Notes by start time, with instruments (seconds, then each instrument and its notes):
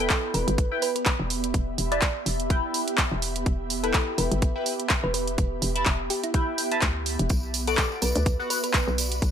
Already playing: ambient pad B3 D5 B5
0.00 synth stab E4 B4 G5, ambient pad G4, synth pluck A4
0.10 kick, clap, closed hi-hat
0.34 fm bass E1, synth pluck B4, open hi-hat
0.48 fm bass G1, ambient pad E5, closed hi-hat
0.58 kick, closed hi-hat
0.72 synth stab E4 B4 G5
0.82 synth pluck B4, open hi-hat
0.96 synth pluck B4, closed hi-hat
1.06 kick, clap, closed hi-hat
1.20 fm bass E1
1.30 open hi-hat
1.44 closed hi-hat
1.54 fm bass E1, kick, closed hi-hat
1.78 fm bass E1, open hi-hat
1.92 synth stab E4 B4 A5, synth pluck D5, closed hi-hat
2.02 kick, clap, closed hi-hat
2.26 fm bass E1, open hi-hat
2.40 closed hi-hat
2.50 synth stab E4 B4 G5, kick, closed hi-hat
2.74 open hi-hat
2.88 closed hi-hat
2.98 kick, clap, closed hi-hat
3.12 fm bass E1
3.22 open hi-hat
3.36 closed hi-hat
3.46 fm bass E1, kick, closed hi-hat
3.70 open hi-hat
3.83 synth stab E4 B4 G5, synth pluck A4, closed hi-hat
3.94 kick, clap, closed hi-hat
4.18 fm bass E1, synth pluck B4, open hi-hat
4.32 fm bass G1, closed hi-hat
4.42 kick, closed hi-hat
4.56 synth stab E4 B4 G5
4.66 open hi-hat
4.80 closed hi-hat
4.90 kick, clap, closed hi-hat
5.04 fm bass E1, synth pluck B4
5.14 synth pluck B4, open hi-hat
5.28 closed hi-hat
5.38 fm bass E1, kick, closed hi-hat
5.62 fm bass E1, open hi-hat
5.76 synth stab E4 B4 A5, closed hi-hat
5.86 fm bass E1, kick, clap, closed hi-hat
6.10 synth pluck G4, open hi-hat
6.24 synth pluck E4, closed hi-hat
6.34 synth stab E4 B4 G5, kick, closed hi-hat
6.58 open hi-hat
6.72 synth stab E4 B4 A5, closed hi-hat
6.82 fm bass D2, kick, clap, closed hi-hat
7.06 open hi-hat
7.19 fm bass E1, closed hi-hat
7.29 fm bass B1, ambient pad B3, kick, closed hi-hat, tambourine
7.43 tambourine
7.54 open hi-hat, tambourine
7.67 synth stab B3 F#4 D5, synth pluck A4, ambient pad D5, closed hi-hat, tambourine
7.73 ambient pad B5
7.77 kick, clap, closed hi-hat, tambourine
7.83 ambient pad F#4
7.92 tambourine
8.02 fm bass B1, synth pluck B4, open hi-hat, tambourine
8.16 fm bass D2, closed hi-hat, tambourine
8.26 kick, closed hi-hat, tambourine
8.39 synth stab B3 F#4 F#5, tambourine
8.50 synth pluck B4, open hi-hat, tambourine
8.64 synth pluck B4, closed hi-hat, tambourine
8.74 kick, clap, closed hi-hat, tambourine
8.88 fm bass B1, tambourine
8.98 open hi-hat, tambourine
9.12 closed hi-hat, tambourine
9.22 fm bass B1, kick, closed hi-hat, tambourine